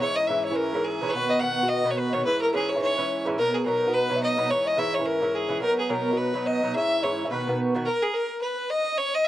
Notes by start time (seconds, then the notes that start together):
0.00 G#2 E3 C#4 E4 C#5
0.16 D#5
0.27 G#2 E3 C#4 E4 E5
0.44 C#5
0.51 G#2 E3 C#4 E4
0.55 A#4
0.73 G#2 E3 C#4 E4
0.84 G#4
1.01 G#2 E3 C#4 E4
1.09 B4 C#5
1.14 B2 D#3 B3 F#4 B4
1.29 D#5
1.40 B2 D#3 B3 F#4 F#5
1.63 B2 D#3 B3 F#4
1.69 D#5
1.84 B2 D#3 B3 F#4
1.91 C#5
1.98 B4
2.09 B2 C#5 D#5
2.13 D#3 B3 F#4 C#5
2.23 G#2 E3 C#4 E4 B4
2.42 A#4
2.53 G#2 E3 C#4 E4 G#4
2.69 C#5
2.75 G#2 E3 C#4 E4
2.82 C#5
2.97 G#2 E3 C#4 E4
3.25 G#2 E3 C#4 E4
3.38 B2 F#3 B3 D#4 A#4
3.53 G#4
3.66 B2 F#3 B3 D#4 A#4
3.87 B2 F#3 B3 D#4
3.93 B4
4.10 B2 F#3 B3 D#4
4.16 E5
4.22 D#5
4.37 B2 F#3 B3 D#4
4.49 G#2 E3 C#4 E4 C#5
4.66 D#5
4.77 G#2 E3 C#4 E4 E5
4.94 C#5
4.99 G#2 E3 C#4 E4
5.06 A#4
5.20 G#2 E3 C#4 E4
5.34 G#4
5.48 G#2 E3 C#4 E4
5.60 B2 F#3 B3 D#4 A#4
5.79 G#4
5.89 B2 F#3 B3 D#4 A#4
6.11 B2 F#3 B3 D#4
6.17 B4
6.34 B2 F#3 B3 D#4
6.46 D#5
6.62 B2 F#3 B3 D#4
6.74 G#2 E3 C#4 E4 E5
7.03 G#2 E3 C#4 E4 C#5
7.25 G#2 E3 C#4 E4
7.30 B2 D#3 B3 F#4 B4
7.47 B2 D#3 B3 F#4
7.75 B2 D#3 B3 F#4
7.85 A#4
8.02 G#4
8.14 A#4
8.41 B4
8.70 D#5
8.98 C#5
9.14 D#5